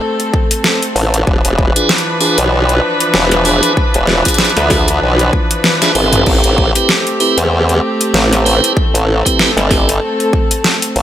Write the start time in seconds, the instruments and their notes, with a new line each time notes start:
Already playing: string section A3 C4 A4
0.20 closed hi-hat
0.34 kick
0.51 closed hi-hat
0.64 snare
0.82 closed hi-hat
0.96 wobble bass A1, open hi-hat
1.14 closed hi-hat
1.27 wobble bass E1, string section E3 F3 D4 B4, kick
1.45 wobble bass E1, closed hi-hat
1.58 kick
1.76 tonewheel organ D4 F4 G#4 B4, closed hi-hat
1.89 snare
1.98 closed hi-hat
2.20 tonewheel organ D4 F4 G#4 B4, open hi-hat
2.38 wobble bass B1, closed hi-hat
2.69 closed hi-hat
3.00 closed hi-hat
3.14 wobble bass E1, snare
3.31 snare, closed hi-hat
3.45 tonewheel organ D4 F4 G#4 B4, open hi-hat
3.63 closed hi-hat
3.77 kick
3.94 wobble bass E1, closed hi-hat
4.07 snare
4.25 tonewheel organ D4 F4 G#4 B4, kick, closed hi-hat
4.28 closed hi-hat
4.34 closed hi-hat
4.38 snare, closed hi-hat
4.44 closed hi-hat
4.49 closed hi-hat
4.57 wobble bass D2, snare, closed hi-hat
4.70 tonewheel organ D4 F4 G#4 E5, kick, snare, open hi-hat
4.88 closed hi-hat
5.02 wobble bass B1
5.19 closed hi-hat
5.33 kick
5.51 closed hi-hat
5.64 snare, high tom
5.82 tonewheel organ D4 F4 G#4 E5, snare, closed hi-hat
5.95 wobble bass G#1, tonewheel organ C4 E4 G4 A4, open hi-hat
6.13 closed hi-hat, mid tom
6.26 wobble bass A1, string section A3 C4 G4, kick, crash
6.44 wobble bass A1, closed hi-hat
6.58 kick
6.75 tonewheel organ C4 E4 G4 B4, closed hi-hat
6.89 snare
7.07 closed hi-hat
7.20 tonewheel organ C4 E4 G4 B4, open hi-hat
7.38 wobble bass E2, closed hi-hat
7.69 closed hi-hat
8.01 closed hi-hat
8.14 wobble bass A1, snare
8.33 snare, closed hi-hat
8.45 tonewheel organ C4 E4 G4 B4, open hi-hat
8.64 closed hi-hat
8.77 string section A4, kick
8.94 wobble bass A1, closed hi-hat
9.25 tonewheel organ C4 E4 G4 B4, kick, closed hi-hat
9.39 snare
9.57 wobble bass G1, snare, closed hi-hat
9.70 tonewheel organ C4 E4 G4 D5, kick, snare, open hi-hat
9.89 closed hi-hat
10.20 closed hi-hat
10.33 kick
10.51 closed hi-hat
10.64 snare
10.82 closed hi-hat
10.96 wobble bass A1, open hi-hat